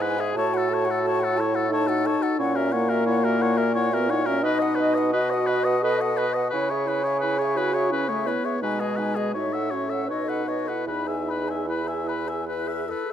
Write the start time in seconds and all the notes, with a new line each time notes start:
Already playing: G#2
0.00 E4 B4 G#5
0.18 G#4 E5
0.34 A2 F#4 A4 C#5 A5
0.54 F#4 A4 F#5
0.69 A4 A5
0.74 C#5
0.85 F#4 F#5
0.91 A4
1.04 A4 A5
1.08 C#5
1.20 F#4 A4 F#5
1.37 E4 A4 C#5 A5
1.54 F#4 A4 F#5
1.70 D#4 A4 C#5 A5
1.87 F#4 A4 F#5
2.05 A4 C#5 A5
2.21 F#4 A4 F#5
2.38 A#2 C#4 E4 C#5 F#5
2.55 F#4 A#4 E5
2.72 A#3 E4 C#5 F#5
2.89 F#4 A#4 E5
3.06 E4 C#5 F#5
3.23 F#4 A#4 E5
3.39 E4 C#5 F#5
3.57 F#4 A#4 E5
3.74 E4 C#5 F#5
3.92 B3 F#4 A#4 E5
4.08 D#4 E4 C#5 F#5
4.25 C#4 F#4 A#4 E5
4.43 B2 D#4 B4 D#5
4.59 B4 D#5 F#5
4.75 B4 D#5
4.80 D#5
4.94 B4 D#5 F#5
5.12 F#4 B4 D#5
5.30 B4 D#5 F#5
5.46 B4 D#5
5.64 B4 D#5 F#5
5.83 A4 B4 D#5
5.99 B4 D#5 F#5
6.17 B4 D#5
6.34 B4 D#5 F#5
6.50 C#3 E4 G#4 B4 C#5
6.70 G#4 C#5 E5
6.86 E4 B4 C#5
7.03 G#4 C#5 E5
7.20 E4 B4
7.24 C#5
7.38 G#4 C#5 E5
7.56 E4 F#4 B4 C#5
7.73 G#4 C#5 E5
7.91 C#4 E4 B4 C#5
8.09 A3 G#4 C#5 E5
8.26 B3 E4 B4 C#5
8.44 G#4 C#5 E5
8.61 B2 G#3 D#4 B4 G#5
8.80 G#4 D#5
8.96 D#4 B4 G#5
9.15 G#4 D#5
9.33 A2 D#4 F#4 C#5 E5
9.52 A4 E5 F#5
9.71 C#4 F#4 C#5 E5
9.88 A4 E5
9.92 F#5
10.07 B2 D#4 B4 C#5 D#5
10.25 A4 B4
10.29 F#5
10.45 B4 C#5 D#5
10.66 A4 B4 F#5
10.70 E4
10.86 E2 D#4 E4 B4 B5
11.05 G#4 E5 G#5
11.23 E4
11.28 B4 B5
11.43 G#4
11.48 E5 G#5
11.64 E4
11.68 E4 B4 B5
11.84 G#4 E5 G#5
12.04 E4 B4
12.09 B5
12.26 G#4 E5 G#5
12.45 E4 B4
12.67 G#4 E5
12.86 E4 A4
12.90 B4
13.06 G#4